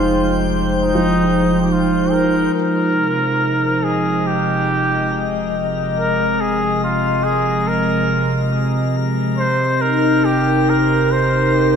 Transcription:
Already playing: sub bass F1, analog synth pad F3 G#3 D#4 C5, flugelhorn F4, felt piano G5, synth texture G5 G6
0.82 flugelhorn D#4
0.95 felt piano F3
1.62 flugelhorn G4
1.72 flugelhorn F4
2.12 flugelhorn A#4
2.54 sub bass F1, flugelhorn A#4, synth texture A#5 A#6
2.88 analog synth pad C3
3.72 analog synth pad D#5
3.83 flugelhorn G#4
4.27 flugelhorn G4
5.99 flugelhorn A#4
6.41 flugelhorn G#4
6.83 flugelhorn F4
7.23 flugelhorn G#4
7.67 flugelhorn A#4
9.38 sub bass F1, flugelhorn C5
9.68 analog synth pad A#4
9.79 analog synth pad D#4, flugelhorn A#4
10.25 flugelhorn G4
10.69 flugelhorn A#4
11.11 flugelhorn C5

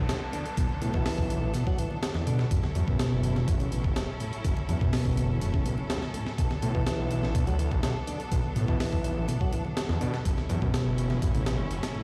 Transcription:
Already playing: string section F#3 B3 D4 A4, downlifter
0.09 detuned saw bass B1, snare, closed hi-hat
0.33 tonewheel organ D3, closed hi-hat, muted conga
0.46 closed hi-hat
0.57 detuned saw bass B1, tonewheel organ B2, kick, closed hi-hat, muted conga
0.69 high conga
0.81 detuned saw bass A2, tonewheel organ B2, closed hi-hat, low conga
0.94 detuned saw bass B2, tonewheel organ E3, kick, muted conga
1.06 tonewheel organ E3, snare, open hi-hat
1.18 detuned saw bass B1, kick, muted conga
1.30 closed hi-hat, high conga
1.42 detuned saw bass A1
1.54 tonewheel organ B2, closed hi-hat, muted conga
1.67 tonewheel organ F#3, kick
1.78 tonewheel organ E3, closed hi-hat, muted conga, low conga
1.91 high conga
2.03 snare, closed hi-hat
2.14 detuned saw bass E2, snare, muted conga
2.27 detuned saw bass B2, tonewheel organ D3, closed hi-hat, low conga
2.39 snare, muted conga
2.51 detuned saw bass F#1, tonewheel organ F#2, string section C#4 E4 A4, kick, closed hi-hat
2.63 snare, high conga
2.75 detuned saw bass E2, tonewheel organ F#2, closed hi-hat, muted conga, low conga
2.88 detuned saw bass F#2, tonewheel organ B2, kick
2.99 tonewheel organ B2, snare, closed hi-hat, muted conga
3.12 detuned saw bass F#1
3.23 closed hi-hat, high conga
3.36 detuned saw bass E1, snare, muted conga
3.48 detuned saw bass A1, tonewheel organ F#2, kick, closed hi-hat
3.60 tonewheel organ C#3, closed hi-hat, muted conga
3.72 tonewheel organ B2, closed hi-hat
3.84 detuned saw bass F#1, kick, high conga
3.96 detuned saw bass F#1, snare, closed hi-hat, muted conga
4.20 tonewheel organ A2, closed hi-hat, muted conga
4.33 closed hi-hat
4.45 detuned saw bass F#1, tonewheel organ F#2, kick, closed hi-hat
4.57 muted conga, high conga
4.69 detuned saw bass E2, tonewheel organ F#2, closed hi-hat, low conga
4.81 detuned saw bass F#2, tonewheel organ B2, kick, muted conga
4.93 tonewheel organ B2, snare, open hi-hat
5.05 detuned saw bass F#1, kick
5.17 closed hi-hat, muted conga, high conga
5.30 detuned saw bass E1
5.41 tonewheel organ F#2, closed hi-hat, muted conga
5.54 tonewheel organ C#3, kick
5.65 detuned saw bass F#2, tonewheel organ B2, closed hi-hat, low conga
5.77 detuned saw bass C#2, muted conga, high conga
5.90 detuned saw bass C#2, snare, closed hi-hat
6.02 snare, muted conga
6.14 tonewheel organ A2, closed hi-hat, low conga
6.26 snare
6.38 detuned saw bass B1, tonewheel organ B2, string section B3 D4, kick, closed hi-hat
6.50 snare, muted conga, high conga
6.62 detuned saw bass A2, tonewheel organ B2, closed hi-hat, low conga
6.75 detuned saw bass B2, tonewheel organ E3, kick
6.86 tonewheel organ E3, snare, closed hi-hat, muted conga
6.99 detuned saw bass B1
7.10 closed hi-hat, muted conga, high conga
7.23 detuned saw bass A1, snare
7.35 detuned saw bass D2, tonewheel organ B2, kick, closed hi-hat
7.47 tonewheel organ F#3, closed hi-hat, muted conga
7.59 tonewheel organ E3, closed hi-hat
7.71 detuned saw bass B1, kick, muted conga, high conga
7.83 detuned saw bass B1, snare, closed hi-hat
8.07 tonewheel organ D3, closed hi-hat, muted conga
8.20 closed hi-hat
8.31 detuned saw bass B1, tonewheel organ B2, kick, closed hi-hat, muted conga
8.44 high conga
8.55 detuned saw bass A2, tonewheel organ B2, closed hi-hat, low conga
8.68 detuned saw bass B2, tonewheel organ E3, kick, muted conga
8.80 tonewheel organ E3, snare, open hi-hat
8.93 detuned saw bass B1, kick, muted conga
9.04 closed hi-hat, high conga
9.17 detuned saw bass A1
9.28 tonewheel organ B2, closed hi-hat, muted conga
9.41 tonewheel organ F#3, kick
9.53 tonewheel organ E3, closed hi-hat, muted conga, low conga
9.65 high conga
9.77 snare, closed hi-hat
9.89 detuned saw bass E2, snare, muted conga
10.01 detuned saw bass B2, tonewheel organ D3, closed hi-hat, low conga
10.14 snare, muted conga
10.25 detuned saw bass F#1, tonewheel organ F#2, string section F#3 C#4 E4, kick, closed hi-hat
10.37 snare, high conga
10.49 detuned saw bass E2, tonewheel organ F#2, closed hi-hat, muted conga, low conga
10.62 detuned saw bass F#2, tonewheel organ B2, kick
10.74 tonewheel organ B2, snare, closed hi-hat, muted conga
10.86 detuned saw bass F#1
10.98 closed hi-hat, high conga
11.10 detuned saw bass E1, snare, muted conga
11.22 detuned saw bass A1, tonewheel organ F#2, kick, closed hi-hat
11.34 tonewheel organ C#3, closed hi-hat, muted conga
11.46 tonewheel organ B2, snare, closed hi-hat
11.59 detuned saw bass F#1, high conga
11.70 detuned saw bass F#1, closed hi-hat, muted conga
11.83 snare, closed hi-hat
11.95 tonewheel organ A2, muted conga

